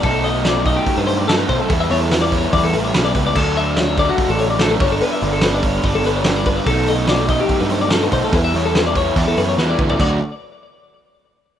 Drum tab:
CC |----------------|----------------|x---------------|----------------|
HH |o-o-o-o-o-o-o-o-|o-o-o-o-o-o-o-o-|--o-o-o-o-o-o-o-|o-o-o-o-o-o-o-o-|
SD |----o-------o---|----o-------o---|----o-------o---|----o-------o---|
FT |----------------|----------------|----------------|----------------|
BD |o-----o-o-----o-|o-----o-o-----o-|o-----o-o-----o-|------o-o-----o-|

CC |----------------|----------------|x---------------|
HH |o-o-o-o-o-o-o-o-|o-o-o-o-o-o-----|----------------|
SD |----o-------o---|----o-------o---|----------------|
FT |----------------|---------------o|----------------|
BD |o-----o-o-----o-|o-----o-o-----o-|o---------------|